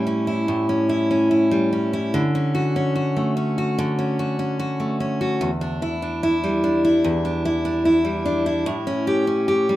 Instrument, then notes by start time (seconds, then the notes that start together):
steel-string acoustic guitar
Already playing: A2 G3 E4
0.07 C#4
0.27 E4
0.48 A2
0.69 C#4
0.89 E4
1.11 C#4
1.31 E4
1.51 G3
1.73 C#4
1.93 E4
2.14 D3
2.35 C#4
2.55 F#4
2.76 C#4
2.96 F#4
3.17 A3
3.37 C#4
3.58 F#4
3.78 D3
3.99 C#4
4.19 F#4
4.39 C#4
4.59 F#4
4.80 A3
5.00 C#4
5.21 F#4
5.41 E2
5.61 D4
5.82 E4
6.02 D4
6.23 E4
6.44 G3
6.64 D4
6.85 E4
7.04 E2
7.25 D4
7.45 E4
7.65 D4
7.85 E4
8.05 G3
8.25 D4
8.46 E4
8.66 A2
8.87 C#4
9.07 G4
9.27 C#4
9.48 G4
9.69 G3